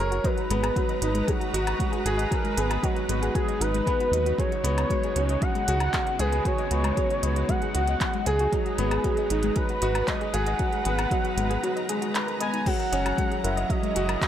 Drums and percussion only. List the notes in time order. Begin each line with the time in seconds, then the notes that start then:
0.12 closed hi-hat
0.24 kick, closed hi-hat
0.38 closed hi-hat
0.50 closed hi-hat
0.64 closed hi-hat, low woodblock
0.76 kick, closed hi-hat
0.89 closed hi-hat
1.02 closed hi-hat
1.15 closed hi-hat
1.28 kick, closed hi-hat
1.41 closed hi-hat
1.54 closed hi-hat
1.67 closed hi-hat, low woodblock
1.80 kick, closed hi-hat
1.93 closed hi-hat
2.06 closed hi-hat
2.19 closed hi-hat
2.32 kick, closed hi-hat
2.45 closed hi-hat
2.58 closed hi-hat
2.71 closed hi-hat, low woodblock
2.83 kick, closed hi-hat
2.96 closed hi-hat
3.09 closed hi-hat
3.23 closed hi-hat
3.35 kick, closed hi-hat
3.48 closed hi-hat
3.61 closed hi-hat
3.74 closed hi-hat
3.87 kick, closed hi-hat
4.00 closed hi-hat
4.13 closed hi-hat
4.26 closed hi-hat
4.38 kick, closed hi-hat
4.52 closed hi-hat
4.65 closed hi-hat
4.78 closed hi-hat, low woodblock
4.90 kick, closed hi-hat
5.03 closed hi-hat
5.16 closed hi-hat
5.29 closed hi-hat
5.42 kick, closed hi-hat
5.55 closed hi-hat
5.68 closed hi-hat
5.80 closed hi-hat, low woodblock
5.94 kick, clap, closed hi-hat
6.07 closed hi-hat
6.19 closed hi-hat
6.32 closed hi-hat
6.45 kick, closed hi-hat
6.58 closed hi-hat
6.71 closed hi-hat
6.84 closed hi-hat, low woodblock
6.97 kick, closed hi-hat
7.10 closed hi-hat
7.23 closed hi-hat
7.36 closed hi-hat
7.49 kick, closed hi-hat
7.62 closed hi-hat
7.75 closed hi-hat
7.87 closed hi-hat
8.01 kick, clap, closed hi-hat
8.13 closed hi-hat
8.26 closed hi-hat
8.39 closed hi-hat
8.52 kick, closed hi-hat
8.66 closed hi-hat
8.78 closed hi-hat
8.91 closed hi-hat, low woodblock
9.04 kick, closed hi-hat
9.17 closed hi-hat
9.30 closed hi-hat
9.43 closed hi-hat
9.56 kick, closed hi-hat
9.69 closed hi-hat
9.82 closed hi-hat
9.95 closed hi-hat, low woodblock
10.08 kick, clap, closed hi-hat
10.21 closed hi-hat
10.34 closed hi-hat
10.46 closed hi-hat
10.59 kick, closed hi-hat
10.72 closed hi-hat
10.85 closed hi-hat
10.99 closed hi-hat, low woodblock
11.11 kick, closed hi-hat
11.25 closed hi-hat
11.38 closed hi-hat
11.51 closed hi-hat
11.64 closed hi-hat
11.77 closed hi-hat
11.89 closed hi-hat
12.02 closed hi-hat
12.15 clap, closed hi-hat
12.28 closed hi-hat
12.41 closed hi-hat
12.54 closed hi-hat
12.66 kick, closed hi-hat, crash
12.79 closed hi-hat
12.93 closed hi-hat
13.06 closed hi-hat, low woodblock
13.18 kick, closed hi-hat
13.32 closed hi-hat
13.44 closed hi-hat
13.57 closed hi-hat
13.70 kick, closed hi-hat
13.83 closed hi-hat
13.96 closed hi-hat
14.09 closed hi-hat, low woodblock
14.21 kick, clap, closed hi-hat